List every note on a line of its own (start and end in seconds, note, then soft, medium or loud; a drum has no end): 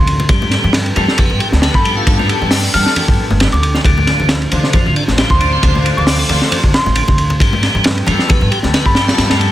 0.00 0.24 D2 medium
0.00 0.25 D3 medium
0.00 0.26 A3 medium
0.00 0.26 C4 medium
0.00 0.26 F4 loud
0.07 ride medium
0.19 0.26 C3 medium
0.19 ride soft
0.19 muted conga medium
0.29 0.57 G2 loud
0.29 9.52 D3 medium
0.29 0.73 G3 medium
0.29 9.52 A3 medium
0.29 3.82 B3 medium
0.29 3.82 G4 loud
0.29 kick loud
0.29 ride loud
0.42 high conga loud
0.51 snare soft
0.51 ride medium
0.64 0.90 G2 loud
0.64 low conga medium
0.73 snare loud
0.73 ride loud
0.86 ride soft
0.96 1.04 G2 loud
0.96 1.17 F3 medium
0.96 1.11 B3 medium
0.96 1.11 G4 medium
0.96 1.11 A4 medium
0.96 ride medium
0.96 high conga medium
0.96 low conga loud
1.08 snare medium
1.18 1.39 B3 medium
1.18 kick loud
1.18 ride medium
1.18 low conga medium
1.30 1.37 G2 loud
1.30 muted conga soft
1.40 1.48 G4 loud
1.40 ride medium
1.52 1.66 D2 medium
1.52 2.72 B3 loud
1.52 2.72 G4 medium
1.52 2.72 A4 loud
1.52 snare soft
1.52 high conga loud
1.62 1.74 B3 medium
1.62 snare loud
1.62 ride medium
1.74 2.01 G2 medium
1.74 1.94 B5 medium
1.74 kick medium
1.85 1.96 G3 loud
1.85 ride medium
1.97 2.18 F4 medium
2.07 2.34 G2 loud
2.07 kick loud
2.07 ride medium
2.19 2.28 F3 medium
2.19 high conga loud
2.29 2.40 G3 loud
2.29 ride medium
2.41 2.68 G2 medium
2.41 2.62 G3 medium
2.41 low conga medium
2.51 snare loud
2.51 open hi-hat medium
2.63 3.07 D4 medium
2.63 ride soft
2.74 2.82 G2 loud
2.74 2.84 B3 medium
2.74 2.84 G4 medium
2.74 2.84 A4 loud
2.74 2.82 F6 medium
2.74 ride medium
2.74 high conga medium
2.74 low conga medium
2.86 2.93 F6 medium
2.86 snare medium
2.96 3.11 B3 medium
2.96 3.11 G4 medium
2.96 3.11 A4 medium
2.96 ride loud
2.96 low conga medium
3.08 3.15 G2 medium
3.08 kick medium
3.30 3.44 G1 loud
3.30 high conga loud
3.40 3.48 G3 loud
3.40 snare loud
3.40 ride medium
3.52 3.79 D2 medium
3.52 3.59 D6 medium
3.52 ride soft
3.52 muted conga medium
3.63 3.70 D6 medium
3.63 ride medium
3.74 3.81 F3 medium
3.74 snare soft
3.74 muted conga medium
3.84 4.12 D2 loud
3.84 4.28 D3 medium
3.84 7.37 C4 medium
3.84 7.37 F4 loud
3.84 kick loud
3.84 ride medium
3.98 high conga medium
4.07 snare soft
4.07 ride medium
4.19 4.46 D2 medium
4.19 low conga medium
4.29 snare loud
4.29 ride medium
4.42 ride soft
4.52 4.59 D2 loud
4.52 4.73 C3 medium
4.52 4.67 D4 medium
4.52 4.67 F4 medium
4.52 4.67 C5 loud
4.52 ride medium
4.52 high conga medium
4.52 low conga medium
4.64 snare soft
4.73 4.95 F3 medium
4.73 kick loud
4.73 ride medium
4.73 low conga medium
4.86 4.92 D2 loud
4.86 muted conga soft
4.96 5.04 D4 loud
4.96 ride medium
5.08 5.22 A1 medium
5.08 6.27 D4 medium
5.08 6.27 F4 medium
5.08 6.27 C5 loud
5.08 snare soft
5.08 high conga loud
5.18 5.30 G3 medium
5.18 snare loud
5.18 ride medium
5.30 5.57 D2 medium
5.30 5.50 C6 medium
5.30 kick loud
5.41 5.51 D3 loud
5.41 ride medium
5.53 5.74 C4 medium
5.63 5.90 D2 loud
5.63 kick loud
5.63 ride medium
5.75 5.84 C3 medium
5.75 high conga medium
5.85 5.96 D3 loud
5.85 ride medium
5.97 6.24 D2 medium
5.97 6.18 D3 medium
5.97 6.16 D6 medium
5.97 low conga medium
6.07 snare loud
6.07 open hi-hat medium
6.19 6.63 A3 medium
6.19 ride soft
6.29 6.37 D2 loud
6.29 6.39 D4 loud
6.29 6.39 F4 medium
6.29 6.39 C5 loud
6.29 ride medium
6.29 high conga medium
6.29 low conga medium
6.42 snare medium
6.51 6.67 D4 medium
6.51 6.67 F4 medium
6.51 6.67 C5 medium
6.51 ride loud
6.51 low conga medium
6.64 6.70 D2 medium
6.64 kick medium
6.74 7.18 C6 medium
6.74 snare loud
6.74 ride medium
6.86 7.00 A1 medium
6.86 high conga loud
6.95 7.04 D3 loud
6.95 ride medium
7.08 7.35 D2 medium
7.08 kick loud
7.08 muted conga medium
7.18 ride medium
7.30 7.37 C3 medium
7.30 ride soft
7.30 muted conga medium
7.40 7.68 G2 loud
7.40 7.84 G3 medium
7.40 9.52 B3 medium
7.40 9.52 G4 medium
7.40 kick loud
7.40 ride loud
7.53 high conga loud
7.63 snare soft
7.63 ride medium
7.75 8.01 G2 loud
7.75 low conga medium
7.84 snare loud
7.84 ride medium
7.98 ride soft
8.07 8.15 G2 loud
8.07 8.28 F3 medium
8.07 8.22 B3 medium
8.07 8.22 G4 medium
8.07 8.22 A4 medium
8.07 ride medium
8.07 high conga medium
8.07 low conga loud
8.19 snare soft
8.29 8.51 B3 medium
8.29 muted upright bass stroke soft
8.29 kick loud
8.29 ride medium
8.29 low conga medium
8.41 8.48 G2 loud
8.41 muted conga soft
8.51 8.59 G4 loud
8.51 ride medium
8.63 8.77 D2 medium
8.63 9.52 B3 medium
8.63 9.52 G4 medium
8.63 9.52 A4 loud
8.63 snare soft
8.63 high conga loud
8.74 8.85 B3 medium
8.74 snare loud
8.74 ride loud
8.86 9.12 G2 medium
8.86 9.05 B5 medium
8.86 kick medium
8.95 9.07 G3 loud
8.95 snare loud
8.95 ride medium
9.08 9.29 F4 medium
9.08 snare loud
9.08 ride medium
9.18 9.46 G2 loud
9.18 snare loud
9.18 ride medium
9.30 9.40 F3 medium
9.30 snare loud
9.30 ride medium
9.30 high conga medium
9.40 9.51 G3 loud
9.40 ride medium